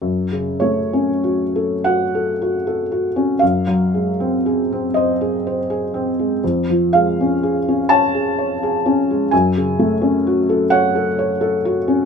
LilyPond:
\new Staff \with { instrumentName = "Felt piano" } { \time 6/8 \key fis \minor \tempo 4. = 41 << { r8 cis''4 fis''4. | eis''4. dis''4. | r8 eis''4 a''4. | gis''4. fis''4. | } \\ { fis,16 cis16 a16 cis'16 fis'16 a'16 fis'16 a'16 fis'16 a'16 fis'16 cis'16 | fis,16 fis16 gis16 bis16 gis'16 bis16 bis'16 gis'16 bis'16 gis'16 bis16 gis16 | eis,16 eis16 gis16 cis'16 gis'16 cis'16 cis''16 gis'16 cis''16 gis'16 cis'16 gis16 | fis,16 cis16 a16 cis'16 fis'16 a'16 cis''16 a'16 cis''16 a'16 fis'16 cis'16 | } >> }